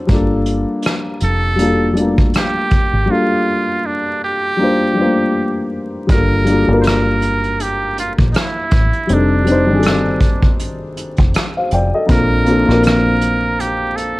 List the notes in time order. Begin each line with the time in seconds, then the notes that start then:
Already playing: F#3 C4 D4 E4 C5
0.07 G1 G3 A#3 D4, kick, closed hi-hat
0.12 F4 A4
0.46 closed hi-hat
0.82 cross-stick, closed hi-hat
1.20 F1 A4, closed hi-hat
1.56 G3 A#3 D4, closed hi-hat
1.61 F4 A4
1.93 G3 A3 D4, closed hi-hat
1.98 A#3 F4 G4
2.18 kick
2.34 G4, cross-stick, closed hi-hat
2.71 kick, closed hi-hat
2.93 G#1
3.06 G3 A#3
3.10 D4 F4 A4
3.86 D4
4.24 G4
4.57 G3 A#3 D4
4.62 F4 C5
4.94 G3 A3
4.98 D4 F4 C5
5.02 A#3
6.07 G1 G3 A#3 D4, kick, closed hi-hat
6.11 F4 A4 A#4
6.44 G3 A#3 D4, closed hi-hat
6.49 F4 A4
6.66 G1 G3 A#3 D4
6.71 F4 A#4
6.81 C5, closed hi-hat
6.87 A#4, cross-stick
7.22 closed hi-hat
7.44 closed hi-hat
7.60 G4, closed hi-hat
7.98 F4, closed hi-hat
8.19 A#1, kick
8.32 D#4, closed hi-hat
8.36 E4, cross-stick
8.71 A1, kick, closed hi-hat
8.93 closed hi-hat
9.07 F1 G3 C4 D4, closed hi-hat
9.12 D4 D#4 A4
9.45 G3 C4 D4, closed hi-hat
9.50 D#4 C5
9.66 G1 G3 C4 D4
9.71 D#3 G#4
9.79 A4, closed hi-hat
9.87 cross-stick
10.21 kick, closed hi-hat
10.43 kick
10.59 closed hi-hat
10.97 closed hi-hat
11.17 F1, kick, closed hi-hat
11.34 cross-stick, closed hi-hat
11.57 C5 F5
11.71 F1 D5 G5, closed hi-hat
11.94 A4 D#5
12.07 A#1 A#3 C4 D4, kick, closed hi-hat
12.11 F4 A4 A#4
12.45 A#3 C4 D4, closed hi-hat
12.50 F4 A4
12.65 A#1 A#3 C4 D4
12.70 F4 A#4, cross-stick
12.83 A#4, cross-stick, closed hi-hat
13.21 closed hi-hat
13.60 G4, closed hi-hat
13.96 A4, closed hi-hat